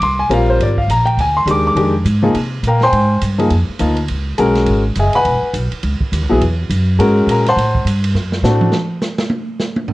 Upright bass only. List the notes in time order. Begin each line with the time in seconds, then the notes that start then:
0.01 C2
0.29 A#1
0.59 G#1
0.88 A#1
1.17 D2
1.46 D#2
1.75 F2
2.05 G#2
2.34 C3
2.63 A#2
2.92 G#2
3.22 G2
3.51 F2
3.69 muted upright bass stroke
3.81 D2
4.10 C#2
4.39 B1
4.67 G#1
4.96 F#1
5.25 E1
5.42 muted upright bass stroke
5.54 B1
5.72 muted upright bass stroke
5.83 C#2
6.00 muted upright bass stroke
6.12 D#2
6.22 C#2
6.31 B1
6.41 E2
6.70 F#2
6.99 G#2
7.27 A#2
7.56 A2
7.85 G2
8.14 F#2
8.43 A2